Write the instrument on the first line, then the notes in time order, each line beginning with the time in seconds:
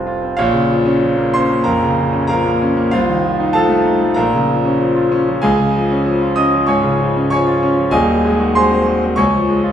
grand piano
Already playing: C2 C3 F3 C4 F4
0.07 F4
0.23 C4
0.37 A#1 F4 C#5 F5
0.52 C#3
0.70 F3
0.85 C#4
1.02 F3
1.17 A#3
1.34 C#4 C5 C6
1.50 A#3
1.64 F2 A#4 F5 A#5
1.83 C#3
1.99 F3
2.13 C#4
2.27 F3 A#4 F5 A#5
2.45 A#3
2.61 C#4
2.77 A#3
2.91 C2 F4 C5 F5
3.09 D#3
3.24 F3
3.40 D#4
3.53 F3 A4 F5 A5
3.69 A3
3.85 D#4
4.01 A3
4.14 A#1 A#4 F5 A#5
4.33 C#3
4.49 F3
4.65 C#4
4.81 F3
4.95 F4
5.12 C#4
5.28 F3
5.42 C#2 G#4 F5 G#5
5.59 C#3
5.75 F3
5.90 C#4
6.06 F3
6.22 F4
6.36 C#4 D#5 D#6
6.53 F3
6.66 G#2 C#5 G#5 C#6
6.83 C#3
6.99 F3
7.16 C#4
7.30 F3 C#5 G#5 C#6
7.47 F4
7.63 C#4
7.77 F3
7.91 D#1 D#2 G#4 D#5 G#5
8.09 F#3
8.24 G#3
8.40 F#4
8.55 G#3 C5 G#5 C6
8.71 C4
8.86 F#4
9.02 C4
9.16 C#2 C#5 G#5 C#6
9.34 F3
9.48 G#3
9.63 F4